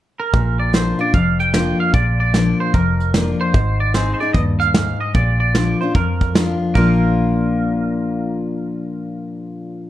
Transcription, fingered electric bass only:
0.34 0.92 A#1 medium
1.14 1.72 F1 medium
1.94 2.53 A#1 medium
2.74 3.33 F1 medium
3.54 4.13 G#1 medium
4.34 4.93 D#2 medium
5.15 5.73 A#1 medium
5.95 6.54 F2 medium
6.75 9.90 A#1 medium

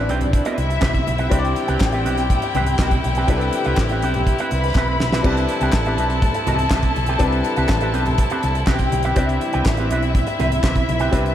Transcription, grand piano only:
0.00 1.27 G3 medium
0.00 1.28 C4 medium
0.00 1.28 D4 medium
0.00 1.28 E4 medium
0.00 1.29 B4 loud
1.30 3.23 G3 medium
1.30 3.23 C4 medium
1.30 3.24 D4 medium
1.30 3.24 E4 medium
1.30 1.38 C5 medium
1.39 3.28 D5 loud
3.27 5.20 G3 medium
3.27 5.21 C4 medium
3.27 5.21 D4 medium
3.27 5.21 E4 medium
3.27 3.35 A4 medium
3.37 5.25 B4 loud
5.23 7.16 G3 medium
5.23 7.16 C4 medium
5.23 7.17 D4 medium
5.23 7.17 E4 medium
5.23 7.18 B4 medium
7.19 9.12 G3 medium
7.19 9.12 C4 medium
7.19 9.12 D4 medium
7.19 9.13 E4 medium
7.19 9.13 B4 loud
9.16 11.08 G3 medium
9.16 11.09 C4 medium
9.16 11.09 D4 medium
9.16 11.09 E4 medium
9.16 11.10 G4 medium
11.12 11.35 G3 medium
11.12 11.35 C4 medium
11.12 11.35 D4 medium
11.12 11.35 E4 medium
11.12 11.35 B4 loud

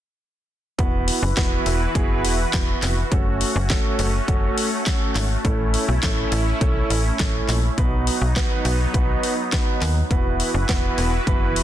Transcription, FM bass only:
0.79 1.10 E1 loud
1.23 1.33 F#1 medium
1.37 1.58 E1 loud
1.66 1.87 E1 medium
1.95 2.26 F#1 loud
2.24 2.46 E1 medium
2.54 2.75 E1 loud
2.83 3.04 F1 loud
3.12 3.43 F#1 loud
3.56 3.77 F#1 loud
3.99 4.20 F#1 medium
4.28 4.49 F#1 loud
5.16 5.37 G#1 medium
5.45 5.76 A1 loud
5.88 5.99 B1 medium
6.03 6.24 A1 medium
6.32 6.53 A1 medium
6.61 6.82 B1 loud
6.90 7.11 A1 medium
7.20 7.41 A1 medium
7.48 7.70 A#1 loud
7.78 8.09 B1 loud
8.21 8.43 B1 medium
8.65 8.86 B1 medium
8.94 9.15 B1 loud
9.82 10.03 D#2 loud
10.11 10.42 E1 loud
10.54 10.65 F#1 medium
10.69 10.90 E1 loud
10.98 11.19 E1 medium
11.27 11.58 F#1 medium
11.56 11.63 E1 medium

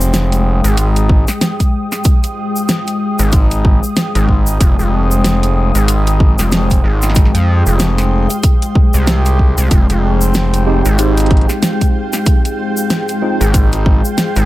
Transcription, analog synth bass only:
0.00 0.61 F1 medium
0.64 1.25 G#1 medium
3.19 3.80 G#1 loud
4.15 4.58 G#1 loud
4.61 4.76 F1 medium
4.79 5.72 F1 medium
5.75 6.36 G#1 medium
6.39 6.82 F1 medium
6.84 7.32 G#1 medium
7.35 7.63 F2 medium
7.67 8.27 F1 medium
8.94 9.55 C2 medium
9.58 9.69 C2 loud
9.71 9.87 F1 loud
9.90 10.83 F1 loud
10.86 11.46 G#1 loud
13.41 14.02 G#1 medium
14.36 14.45 G#1 medium

